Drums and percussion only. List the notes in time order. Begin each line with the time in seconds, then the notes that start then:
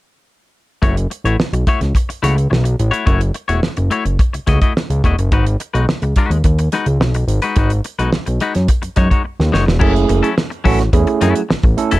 0.83 kick, closed hi-hat
0.97 closed hi-hat
1.11 closed hi-hat
1.25 closed hi-hat
1.40 snare
1.53 closed hi-hat
1.67 kick, closed hi-hat
1.81 snare, closed hi-hat
1.95 kick, closed hi-hat
2.10 closed hi-hat
2.24 snare, closed hi-hat
2.38 closed hi-hat
2.53 snare
2.65 closed hi-hat
2.79 closed hi-hat
2.94 closed hi-hat
3.07 kick, closed hi-hat
3.21 closed hi-hat
3.34 closed hi-hat
3.49 closed hi-hat
3.63 snare
3.77 closed hi-hat
3.91 closed hi-hat
4.06 closed hi-hat
4.19 kick, closed hi-hat
4.34 closed hi-hat
4.47 kick, snare, closed hi-hat
4.62 kick, closed hi-hat
4.77 snare
4.90 closed hi-hat
5.04 kick, closed hi-hat
5.19 closed hi-hat
5.32 kick, closed hi-hat
5.47 closed hi-hat
5.60 closed hi-hat
5.75 closed hi-hat
5.89 snare
6.02 closed hi-hat
6.16 kick, closed hi-hat
6.31 closed hi-hat
6.44 kick, closed hi-hat
6.59 closed hi-hat
6.72 snare, closed hi-hat
6.86 closed hi-hat
7.01 snare
7.14 closed hi-hat
7.28 closed hi-hat
7.42 closed hi-hat
7.56 kick, closed hi-hat
7.70 closed hi-hat
7.84 closed hi-hat
7.99 closed hi-hat
8.12 snare
8.27 closed hi-hat
8.40 closed hi-hat
8.55 snare, closed hi-hat
8.68 kick, closed hi-hat
8.83 closed hi-hat
8.96 kick, snare, closed hi-hat
9.11 kick, closed hi-hat
9.40 snare
9.54 snare
9.68 snare
9.81 kick, crash
9.96 closed hi-hat
10.09 closed hi-hat
10.24 closed hi-hat
10.38 snare
10.52 closed hi-hat
10.65 kick, open hi-hat
10.79 snare, closed hi-hat
10.93 kick, closed hi-hat
11.07 closed hi-hat
11.21 snare, closed hi-hat
11.36 closed hi-hat
11.50 snare
11.63 kick, closed hi-hat
11.78 closed hi-hat
11.91 closed hi-hat